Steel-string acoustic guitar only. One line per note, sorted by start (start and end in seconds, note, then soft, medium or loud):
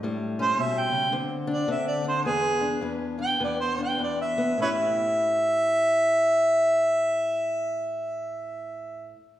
0.03 0.57 A2 medium
0.03 1.12 G3 medium
0.39 1.11 C#4 medium
0.57 0.91 B2 medium
0.91 1.12 C#3 medium
1.12 1.67 D3 medium
1.12 1.68 C4 medium
1.47 2.03 D4 medium
1.68 2.22 D3 medium
1.68 2.22 C4 medium
2.04 2.23 D4 medium
2.25 2.80 E2 medium
2.25 2.81 B3 medium
2.61 3.17 D4 medium
2.81 3.39 E2 medium
2.81 3.39 B3 medium
3.19 3.77 D4 medium
3.40 3.98 E2 medium
3.40 4.36 B3 medium
3.78 4.57 D4 medium
3.99 4.57 E2 medium
4.38 4.57 B3 medium
4.58 9.13 A2 medium
4.58 9.15 C#4 medium
4.62 9.17 E4 medium
4.62 9.19 G4 medium